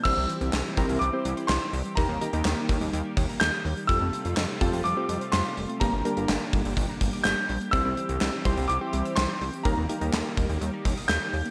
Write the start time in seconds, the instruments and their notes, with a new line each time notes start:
0.04 analog synth bass C2, analog synth pad E3 G3 C4 G4, synth arpeggio sound E3, synth keys C4 E4 G4 C5, grand piano E6, kick, crash
0.17 analog synth bass C2, synth arpeggio sound G3
0.29 synth arpeggio sound E3, closed hi-hat
0.41 analog synth bass C2, synth arpeggio sound C4, closed hi-hat
0.53 analog synth bass C2, snare, clap
0.65 synth arpeggio sound E4
0.77 analog synth bass C2, synth arpeggio sound E3, synth keys C4 E4 G4 A#4, kick, closed hi-hat
0.89 analog synth bass C2, synth arpeggio sound E5, closed hi-hat
0.99 analog synth bass C2, synth arpeggio sound E3, grand piano D6, closed hi-hat
1.13 synth keys C4 E4 G4 C5, synth arpeggio sound G5
1.25 analog synth bass C2, synth arpeggio sound E3, closed hi-hat
1.37 synth arpeggio sound C6, closed hi-hat
1.47 analog synth bass C2, synth arpeggio sound E3, grand piano C6, snare, clap
1.61 synth arpeggio sound E6
1.73 analog synth bass C2, synth arpeggio sound E3, open hi-hat
1.85 synth arpeggio sound G3, closed hi-hat
1.95 analog synth bass D#2, analog synth pad D#3 A#3, synth arpeggio sound D#3, synth keys A#3 D#4 G4 A#4, grand piano A#5, kick, closed hi-hat
2.09 analog synth bass D#2, synth arpeggio sound G3
2.21 synth arpeggio sound D#3, synth keys A#3 D#4 G4 A#4, closed hi-hat
2.33 analog synth bass D#2, synth arpeggio sound A#3, synth keys A#3 D#4 G4 A#4, closed hi-hat
2.45 analog synth bass D#2, snare, clap
2.57 synth arpeggio sound D#4
2.69 analog synth bass D#2, synth arpeggio sound D#3, kick, closed hi-hat
2.81 analog synth bass D#2, synth arpeggio sound D#5, closed hi-hat
2.93 analog synth bass D#2, synth arpeggio sound D#3, closed hi-hat
3.05 synth arpeggio sound G5
3.17 analog synth bass D#2, synth arpeggio sound D#3, kick, closed hi-hat
3.29 synth arpeggio sound A#5, closed hi-hat
3.40 analog synth bass D#2, synth arpeggio sound D#3, grand piano G6, snare, clap
3.53 synth arpeggio sound D#6
3.65 analog synth bass D#2, synth arpeggio sound D#3, open hi-hat
3.77 synth arpeggio sound G3, closed hi-hat
3.87 analog synth bass F2, analog synth pad C3 A3 F4, synth arpeggio sound G3, synth keys C4 F4 G4 A4, grand piano E6, kick, closed hi-hat
4.01 analog synth bass F2, synth arpeggio sound A3
4.13 synth arpeggio sound G3, closed hi-hat
4.25 analog synth bass F2, synth arpeggio sound C4, closed hi-hat
4.37 analog synth bass F2, snare, clap
4.49 synth arpeggio sound F4
4.61 analog synth bass F2, synth arpeggio sound G3, synth keys C4 F4 G4 A4, kick, closed hi-hat
4.73 analog synth bass F2, synth arpeggio sound G4, closed hi-hat
4.84 analog synth bass F2, synth arpeggio sound G3, grand piano D6, closed hi-hat
4.97 synth keys C4 F4 G4 C5, synth arpeggio sound A4
5.09 analog synth bass F2, synth arpeggio sound G3, closed hi-hat
5.21 synth arpeggio sound C5, closed hi-hat
5.32 analog synth bass F2, synth arpeggio sound G3, grand piano C6, snare, clap
5.45 synth arpeggio sound F5
5.57 analog synth bass F1, synth arpeggio sound G3, open hi-hat
5.69 synth arpeggio sound A3, closed hi-hat
5.80 analog synth bass G1, analog synth pad D3 A#3 G4, synth arpeggio sound G3, synth keys A#3 D4 G4 A#4, grand piano A#5, kick, closed hi-hat
5.93 analog synth bass G1, synth arpeggio sound A#3
6.05 synth arpeggio sound G3, synth keys A#3 D4 G4 A#4, closed hi-hat
6.17 analog synth bass G1, synth keys A#3 D4 G4 A#4, synth arpeggio sound D4, closed hi-hat
6.29 analog synth bass G1, snare, clap
6.41 synth arpeggio sound G4
6.53 analog synth bass G1, synth arpeggio sound G3, kick, closed hi-hat
6.65 analog synth bass G1, synth arpeggio sound G5, closed hi-hat
6.77 analog synth bass G1, synth arpeggio sound G3, kick, closed hi-hat
6.89 synth arpeggio sound A#5
7.01 analog synth bass G1, synth arpeggio sound G3, kick, closed hi-hat
7.13 synth arpeggio sound D6, closed hi-hat
7.24 analog synth bass G1, synth arpeggio sound G3, grand piano G6, snare, clap
7.37 synth arpeggio sound G6
7.49 analog synth bass A#1, synth arpeggio sound G3, open hi-hat
7.61 synth arpeggio sound A#3, closed hi-hat
7.71 analog synth bass C2, analog synth pad E3 G3 C4, synth arpeggio sound G3, synth keys C4 E4 G4 C5, grand piano E6, kick, closed hi-hat
7.85 analog synth bass C2, synth arpeggio sound C4
7.97 synth arpeggio sound G3, closed hi-hat
8.09 analog synth bass C2, synth arpeggio sound E4, closed hi-hat
8.21 analog synth bass C2, snare, clap
8.33 synth arpeggio sound G4
8.45 analog synth bass C2, synth arpeggio sound G3, synth keys C4 E4 G4 C5, kick, closed hi-hat
8.57 analog synth bass C2, synth arpeggio sound G5, closed hi-hat
8.68 analog synth bass C2, synth arpeggio sound G3, grand piano D6, closed hi-hat
8.81 synth keys C4 E4 G4 C5, synth arpeggio sound C6
8.93 analog synth bass C2, synth arpeggio sound G3, closed hi-hat
9.05 synth arpeggio sound E6, closed hi-hat
9.16 analog synth bass C2, synth arpeggio sound G3, grand piano C6, snare, clap
9.29 synth arpeggio sound G6
9.41 analog synth bass C2, synth arpeggio sound G3, open hi-hat
9.53 synth arpeggio sound C4, closed hi-hat
9.63 analog synth bass D#2, analog synth pad D#3 G3 A#3, synth arpeggio sound G3, synth keys A#3 D#4 G4 A#4, grand piano A#5, kick, closed hi-hat
9.77 analog synth bass D#2, synth arpeggio sound A#3
9.89 synth arpeggio sound G3, synth keys A#3 D#4 G4 A#4, closed hi-hat
10.01 analog synth bass D#2, synth keys A#3 D#4 G4 A#4, synth arpeggio sound D#4, closed hi-hat
10.13 analog synth bass D#2, snare, clap
10.25 synth arpeggio sound G4
10.37 analog synth bass D#2, synth arpeggio sound G3, kick, closed hi-hat
10.49 analog synth bass D#2, synth arpeggio sound G5, closed hi-hat
10.61 analog synth bass D#2, synth arpeggio sound G3, closed hi-hat
10.73 synth arpeggio sound A#5
10.85 analog synth bass D#2, synth arpeggio sound G3, kick, closed hi-hat
10.97 synth arpeggio sound D#6, closed hi-hat
11.08 analog synth bass D#2, synth arpeggio sound G3, grand piano G6, snare, clap
11.21 synth arpeggio sound G6
11.33 analog synth bass D#2, synth arpeggio sound G3, open hi-hat
11.45 synth arpeggio sound A#3, closed hi-hat